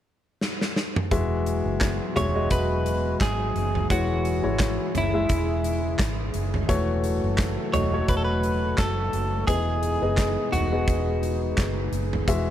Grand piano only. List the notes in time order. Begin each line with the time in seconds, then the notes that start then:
1.11 E3 G#3 F#4 E5
2.16 G#3 F#4 E5
2.35 G#3 F#4 D#5
3.90 E3 G#3 E4 C#5
4.43 G#3 E4 C#5
5.14 G#3 E4 E5
6.68 E3 A3 F#4 C#5
7.73 A3 F#4 D#5
7.94 A3 F#4 C#5
9.48 E3 B3 G#4 D#5
10.02 B3 G#4 D#5
10.72 B3 G#4 D#5
12.28 E3 G#3 F#4 E5